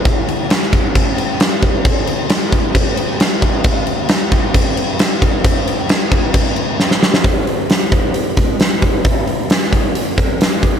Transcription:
\new DrumStaff \with { instrumentName = "Drums" } \drummode { \time 4/4 \tempo 4 = 134 <cymc bd>8 cymc8 <cymc sn>16 sn16 <cymc bd>8 <cymc bd>8 cymc8 <cymc sn>8 <cymc bd>8 | <cymc bd>8 cymc8 <cymc sn>8 <cymc bd>8 <cymc bd>8 cymc8 <cymc sn>8 <cymc bd>8 | <cymc bd>8 cymc8 <cymc sn>8 <cymc bd>8 <cymc bd>8 cymc8 <cymc sn>8 <cymc bd>8 | <cymc bd>8 cymc8 <cymc sn>8 <cymc bd>8 <cymc bd>8 cymc8 sn16 sn16 sn16 sn16 |
<hho bd>8 hho8 <hho sn>8 <hho bd>8 hho8 <hho bd>8 <hho sn>8 <hho bd>8 | <hho bd>8 hho8 <hho sn>16 sn16 <hho bd>8 hho8 <hho bd>8 <hho sn>8 <hho bd>8 | }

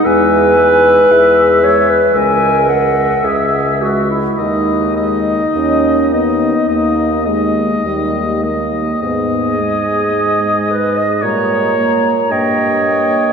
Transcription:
<<
  \new Staff \with { instrumentName = "Flute" } { \time 4/4 \key gis \minor \tempo 4 = 54 gis''4 e''4 gis''8 fis''8 e''8. r16 | dis''2.~ dis''8 r8 | r2 ais''4 g''8 g''8 | }
  \new Staff \with { instrumentName = "Oboe" } { \time 4/4 \key gis \minor e''8 e''4 e''8 e''8 e''4 e''8 | dis''8 dis''4 dis''8 dis''8 dis''4 dis''8 | dis''2 cis''4 cis''4 | }
  \new Staff \with { instrumentName = "Clarinet" } { \time 4/4 \key gis \minor b'4. cis''16 b'16 ais'4 gis'8 fis'16 e'16 | dis'2.~ dis'8 r8 | gis'4. b'16 dis''16 cis''4 dis''4 | }
  \new Staff \with { instrumentName = "French horn" } { \clef bass \time 4/4 \key gis \minor gis8 gis4 gis8 gis8 gis4 gis8 | gis8 gis8 cis'8 b8 ais8 gis8 g8 ais8 | b8 gis4. g8 ais8 ais4 | }
  \new Staff \with { instrumentName = "Bassoon" } { \clef bass \time 4/4 \key gis \minor e,4 e,4 cis,4 cis,4 | dis,4 dis,4 dis,4 dis,4 | gis,2 ais,4 g,4 | }
>>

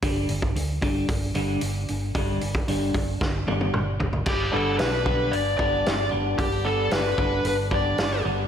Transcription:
<<
  \new Staff \with { instrumentName = "Lead electric guitar" } { \time 4/4 \key g \major \tempo 4 = 113 r1 | r1 | g'8 a'8 b'4 d''8 d''4 r8 | g'8 a'8 b'4 b'8 d''4 r8 | }
  \new Staff \with { instrumentName = "Clean electric guitar" } { \clef bass \time 4/4 \key g \major <g, d g>8 <g, d>8 <g, d>8 <g, d g>8 <g, d>8 <g, d g>8 <g, d>8 <g, d>8 | <g, d g>8 <g, d>8 <g, d g>8 <g, d>8 <g, d>8 <g, d g>8 <g, d>8 <g, d>8 | r8 <d g b d'>8 r8 <d g b d'>8 r8 <d g b d'>8 r8 <d g b d'>8 | r8 <d g b d'>8 r8 <d g b d'>8 r8 <d g b d'>8 r8 <d g b d'>8 | }
  \new Staff \with { instrumentName = "Fretless electric bass" } { \clef bass \time 4/4 \key g \major g,,8 g,,8 d,8 g,,8 g,,8 g,,8 g,,8 g,,8 | g,,8 g,,8 g,,8 g,,8 g,,8 g,,8 g,,8 g,,8 | g,,8 g,,8 b,,4 g,,8 g,,8 g,,8 g,,8 | g,,4 g,,8 g,,8 g,,4 g,,8 g,,8 | }
  \new DrumStaff \with { instrumentName = "Drums" } \drummode { \time 4/4 <hho bd>8 hho16 bd16 hho8 <hho bd>8 <hho bd>8 hho8 hho8 hho8 | <hho bd>8 hho16 bd16 hho8 <hho bd>8 <bd sn>8 tommh16 tommh16 toml8 tomfh16 tomfh16 | <cymc bd>4 <hho sn>8 bd8 hho8 bd8 <hho sn>4 | <hho bd>4 <hho sn>8 bd8 hho8 bd8 <hho sn>4 | }
>>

